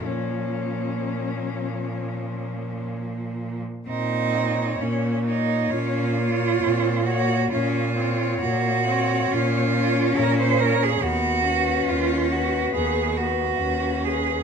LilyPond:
<<
  \new Staff \with { instrumentName = "Cello" } { \time 4/4 \key bes \minor \tempo 4 = 66 des'2. r4 | r8 des''4 des''4 des''4 des''8 | des''8 des''4 des''4 des''4 des''8 | r8 b'4 b'4 b'4 b'8 | }
  \new Staff \with { instrumentName = "Cello" } { \time 4/4 \key bes \minor bes1 | ees'4 des'8 ees'8 f'4. ges'8 | f'4 ges'4 f'4 bes'16 c''16 bes'16 aes'16 | fis'4 f'8 fis'8 aes'8 fis'4 aes'8 | }
  \new Staff \with { instrumentName = "Cello" } { \time 4/4 \key bes \minor f1 | c'4 bes4 des'8 bes8 c'8 bes8 | des'8 c'8 bes8 c'8 des'2 | b8 des'4. b4 des'4 | }
  \new Staff \with { instrumentName = "Cello" } { \clef bass \time 4/4 \key bes \minor bes,1 | bes,4 bes,4 bes,4 bes,4 | bes,4 bes,4 bes,4 bes,4 | dis,4 dis,4 dis,4 dis,4 | }
>>